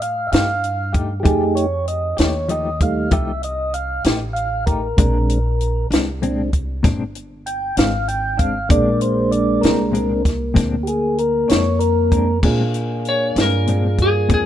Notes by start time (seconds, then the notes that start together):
Already playing: A2
0.02 F5, closed hi-hat
0.27 E5
0.32 G2 A3 D#4 G4 F5, snare, closed hi-hat
0.64 closed hi-hat
0.93 A3 D#4 G4, kick, closed hi-hat
1.20 F3 A3 G4
1.24 F2 A3 D#4 G4 G#4, kick, closed hi-hat
1.55 C#5, closed hi-hat
1.88 D#5, closed hi-hat
2.17 D#2 A3 D#4 G4 C#5, snare, closed hi-hat
2.48 F3 A3 D#4 G4 D#5, closed hi-hat
2.80 G3 A3 D#4 F5, kick, closed hi-hat
3.11 C2 F3 A3 D#4 G4 E5, kick, closed hi-hat
3.43 D#5, closed hi-hat
3.74 F5, closed hi-hat
4.04 A1 A3 D#4 G4, snare, closed hi-hat
4.33 F5, closed hi-hat
4.66 D#4 G4 A#4, kick, closed hi-hat
4.70 A3
4.97 A#1 A#2 G#3 C4 D4, kick, closed hi-hat
5.29 closed hi-hat
5.61 closed hi-hat
5.91 C2 G#3 C4 D4, snare, closed hi-hat
6.21 A#2 G#3 C4 D4, closed hi-hat
6.53 kick, closed hi-hat
6.83 G1 A#2 G#3 C4 D4, kick, snare, closed hi-hat
7.15 closed hi-hat
7.46 G5, closed hi-hat
7.77 G#1 G#3 C4 D4 F5, snare, closed hi-hat
8.08 G5, closed hi-hat
8.37 G#3 C4 D4 F5, kick, closed hi-hat
8.69 A#1 A#2 G#3 A#3 C4 D4 D5, kick, closed hi-hat
9.01 C5, closed hi-hat
9.31 D5, closed hi-hat
9.61 C2 G#3 C4 D4 A#4, snare, closed hi-hat
9.92 A#2 G#3 C4 D4, closed hi-hat
10.25 kick, snare, closed hi-hat
10.54 D2 A#2 G#3 C4 D4, kick, closed hi-hat
10.59 snare
10.83 G4, closed hi-hat
10.88 G#4
11.18 A#4, closed hi-hat
11.48 F2 G#3 C4 D4 C#5, snare, closed hi-hat
11.79 A#4, closed hi-hat
12.12 G#3 C4 D4, kick, closed hi-hat
12.43 A#2 G#3 A#3 C4 D4 F4 G#4, kick, crash
12.74 closed hi-hat
13.05 C#5, closed hi-hat
13.36 G2 G#3 C4 D4, snare, closed hi-hat
13.41 A#4
13.67 A#2 G#3 C4 D4, closed hi-hat
13.98 G#4, kick, closed hi-hat
14.29 F2 A#2 G#3 C4 D4, kick, closed hi-hat
14.34 G#4